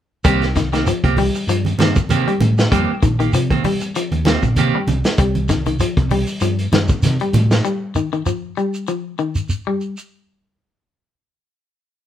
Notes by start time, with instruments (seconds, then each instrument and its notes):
0.24 fingered electric bass C2, clean electric guitar D#3 G3 A#3 C4 G4, kick, closed hi-hat, shekere
0.42 snare, closed hi-hat
0.56 clean electric guitar D#3, muted clean electric guitar stroke, kick, snare, closed hi-hat, shekere
0.73 clean electric guitar D#3 A#3 C4 G4, snare, closed hi-hat, shekere
0.87 clean electric guitar F3, muted clean electric guitar stroke, closed hi-hat, shekere
1.04 fingered electric bass C2, clean electric guitar A#3 C4 G4, muted clean electric guitar stroke, kick, closed hi-hat
1.17 clean electric guitar G3, muted clean electric guitar stroke, open hi-hat, high conga, low conga, shekere
1.35 muted clean electric guitar stroke, shekere
1.47 fingered electric bass G2, clean electric guitar F3, closed hi-hat, shekere
1.65 muted clean electric guitar stroke, closed hi-hat, high conga
1.79 fingered electric bass G2, clean electric guitar D#3 A#3 C4 G4, snare, closed hi-hat, high conga, shekere
1.96 muted clean electric guitar stroke, kick, shekere
2.09 fingered electric bass C3, clean electric guitar D#3 A#3 C4 G4, closed hi-hat, high conga, shekere
2.28 clean electric guitar G3, closed hi-hat
2.40 fingered electric bass A2, muted clean electric guitar stroke, closed hi-hat, high conga, low conga, shekere
2.58 muted clean electric guitar stroke, snare, shekere
2.71 fingered electric bass F2, clean electric guitar D#3 G3 A#3 C4 G4, kick, closed hi-hat, shekere
3.02 fingered electric bass A#1, clean electric guitar D#3, muted clean electric guitar stroke, kick, closed hi-hat, shekere
3.19 clean electric guitar D#3 A#3 G4, muted clean electric guitar stroke, closed hi-hat, shekere
3.33 fingered electric bass C3, clean electric guitar F3, muted clean electric guitar stroke, closed hi-hat, shekere
3.50 clean electric guitar D#3 A#3 C4, muted clean electric guitar stroke, kick, closed hi-hat, high conga
3.64 clean electric guitar G3, muted clean electric guitar stroke, open hi-hat, high conga, low conga, shekere
3.81 muted clean electric guitar stroke, closed hi-hat, shekere
3.95 clean electric guitar F3, closed hi-hat, shekere
4.12 fingered electric bass D#2, muted clean electric guitar stroke, closed hi-hat, high conga
4.25 clean electric guitar D#3 A#3 C4 G4, snare, closed hi-hat, high conga, shekere
4.42 fingered electric bass A#1, muted clean electric guitar stroke, kick, shekere
4.56 fingered electric bass C3, clean electric guitar D#3 A#3 C4 G4, closed hi-hat, high conga, shekere
4.75 clean electric guitar G3
4.87 fingered electric bass C2, muted clean electric guitar stroke, closed hi-hat, high conga, low conga, shekere
5.04 muted clean electric guitar stroke, snare, closed hi-hat, shekere
5.18 fingered electric bass C2, clean electric guitar G3, kick, closed hi-hat, shekere
5.35 closed hi-hat, high conga
5.49 clean electric guitar D#3, kick, snare, closed hi-hat, shekere
5.66 clean electric guitar D#3, closed hi-hat, low conga, shekere
5.79 clean electric guitar F3, closed hi-hat, shekere
5.97 fingered electric bass C2, kick, closed hi-hat
6.10 clean electric guitar G3, open hi-hat, high conga, low conga, shekere
6.27 shekere
6.41 fingered electric bass G2, clean electric guitar F3, closed hi-hat, shekere
6.59 closed hi-hat
6.71 fingered electric bass G2, clean electric guitar D#3, snare, closed hi-hat, high conga, shekere
6.88 kick, shekere
7.02 fingered electric bass C3, snare, closed hi-hat, high conga, shekere
7.20 clean electric guitar G3, closed hi-hat
7.33 fingered electric bass A2, closed hi-hat, high conga, low conga, shekere
7.51 snare, shekere
7.65 clean electric guitar G3, shekere
7.95 clean electric guitar D#3, shekere
8.13 clean electric guitar D#3, shekere
8.26 clean electric guitar F3, shekere
8.57 clean electric guitar G3, shekere
8.74 shekere
8.87 clean electric guitar F3, shekere
9.18 clean electric guitar D#3, shekere
9.35 shekere
9.49 shekere
9.67 clean electric guitar G3
9.81 shekere
9.97 shekere